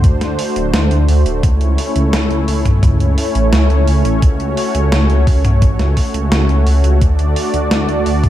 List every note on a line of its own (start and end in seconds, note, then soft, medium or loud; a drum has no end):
0.00 0.20 D2 loud
0.00 8.29 A3 medium
0.00 1.39 D4 medium
0.00 1.39 F#4 medium
0.00 1.41 C5 medium
0.00 kick loud
0.00 closed hi-hat medium
0.21 0.37 D2 medium
0.21 snare soft
0.21 closed hi-hat soft
0.39 open hi-hat medium
0.56 0.72 D1 medium
0.56 closed hi-hat medium
0.74 0.89 D2 loud
0.74 snare loud
0.74 closed hi-hat medium
0.91 1.07 D2 medium
0.91 closed hi-hat soft
1.08 1.24 D2 loud
1.08 open hi-hat medium
1.26 1.42 D1 medium
1.26 closed hi-hat medium
1.43 1.59 C#2 loud
1.43 6.98 C#4 medium
1.43 4.20 E4 medium
1.43 6.98 C#5 medium
1.43 kick loud
1.43 closed hi-hat medium
1.61 1.77 C#2 medium
1.61 closed hi-hat soft
1.78 open hi-hat medium
1.96 2.11 C#2 medium
1.96 closed hi-hat medium
2.13 2.29 C#2 loud
2.13 snare loud
2.13 closed hi-hat medium
2.31 2.46 C#2 medium
2.31 closed hi-hat soft
2.48 2.64 C#2 loud
2.48 open hi-hat medium
2.65 2.81 B1 medium
2.65 kick medium
2.65 closed hi-hat medium
2.65 mid tom medium
2.83 2.99 C#2 loud
2.83 kick loud
2.83 closed hi-hat medium
2.83 mid tom medium
3.00 3.16 C#2 medium
3.00 closed hi-hat soft
3.18 open hi-hat medium
3.35 3.51 A1 medium
3.35 closed hi-hat medium
3.53 3.68 C#2 loud
3.53 snare loud
3.53 closed hi-hat medium
3.70 3.86 C#2 medium
3.70 closed hi-hat soft
3.88 4.03 C#2 medium
3.88 open hi-hat medium
4.05 4.21 A1 medium
4.05 closed hi-hat medium
4.22 4.38 C#2 loud
4.22 8.29 F#4 medium
4.22 kick loud
4.22 closed hi-hat medium
4.40 4.56 C#2 medium
4.40 closed hi-hat soft
4.57 open hi-hat medium
4.75 4.91 C#2 medium
4.75 closed hi-hat medium
4.92 5.08 C#2 loud
4.92 snare loud
4.92 closed hi-hat medium
5.10 5.25 C#2 medium
5.10 closed hi-hat soft
5.27 kick loud
5.27 open hi-hat medium
5.44 5.60 B1 medium
5.44 closed hi-hat medium
5.44 mid tom medium
5.62 5.78 A1 loud
5.62 kick loud
5.62 closed hi-hat medium
5.79 5.95 C#2 medium
5.79 snare soft
5.79 closed hi-hat soft
5.97 kick medium
5.97 open hi-hat medium
6.14 6.30 C#2 medium
6.14 closed hi-hat medium
6.32 6.48 C#2 loud
6.32 snare loud
6.32 closed hi-hat medium
6.49 6.65 C#2 medium
6.49 closed hi-hat soft
6.67 6.82 C#2 medium
6.67 open hi-hat medium
6.84 7.00 C#2 medium
6.84 closed hi-hat medium
7.02 7.17 D2 loud
7.02 8.29 D4 medium
7.02 8.29 D5 loud
7.02 kick loud
7.02 closed hi-hat medium
7.19 7.35 D2 medium
7.19 closed hi-hat soft
7.36 open hi-hat medium
7.54 7.70 D2 medium
7.54 closed hi-hat medium
7.71 7.87 D2 loud
7.71 snare loud
7.71 closed hi-hat medium
7.89 closed hi-hat soft
8.06 8.22 D2 loud
8.06 open hi-hat medium
8.24 8.29 C2 medium
8.24 kick medium
8.24 closed hi-hat soft
8.24 mid tom medium